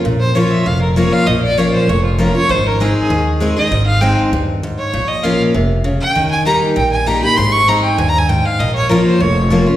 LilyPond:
<<
  \new Staff \with { instrumentName = "Fiddle" } { \time 4/4 \key bes \dorian \tempo 4 = 196 r8 c''8 des''8 e''8 f''8 bes'8 des''8 f''8 | ees''8 d''8 des''8 c''8 des''8 f'8 bes'8 des''8 | c''8 bes'8 aes'8 aes'4. r8 ees''8~ | ees''8 f''8 g''8 r2 des''8~ |
des''8 ees''8 f''8 r2 g''8~ | g''8 aes''8 bes''8 r8 g''8 aes''8 bes''8 ces'''8 | c'''8 des'''8 bes''8 g''8 \tuplet 3/2 { aes''8 bes''8 aes''8 } g''8 f''8 | ees''8 des''8 bes'8 c''8 des''4 r4 | }
  \new Staff \with { instrumentName = "Steel-string acoustic guitar" } { \time 4/4 \key bes \dorian << { r4 <f bes des' f'>4 r4 <f bes des' f'>4 | r4 <f bes des' f'>4 r4 <f bes des' f'>8 <des' f'>8 | r4 <aes c' ees' aes'>4 r4 <aes c' ees' aes'>8 <ees' aes'>8 | r4 <aes c' ees' aes'>4 r2 |
r4 <f bes des' f'>4 r2 | r4 <g bes ees' g'>4 r4 <g bes ees' g'>8 <ees' g'>8 | r4 <aes c' ees' aes'>4 r2 | r4 <f bes des' f'>4 r4 <f bes des' f'>8 <des' f'>8 | } \\ { bes,2 f,2 | bes,2 f,2 | aes,2 ees2 | aes,2 g,4 aes,4 |
bes,2 c4 des4 | ees2 bes,2 | aes,2 g,4 aes,4 | bes,2 f,2 | } >> }
  \new Staff \with { instrumentName = "Upright bass" } { \clef bass \time 4/4 \key bes \dorian bes,,2 f,,2 | bes,,2 f,,2 | aes,,2 ees,2 | aes,,2 ees,2 |
bes,,2 f,,2 | ees,2 bes,,2 | aes,,2 ees,2 | bes,,2 f,,2 | }
>>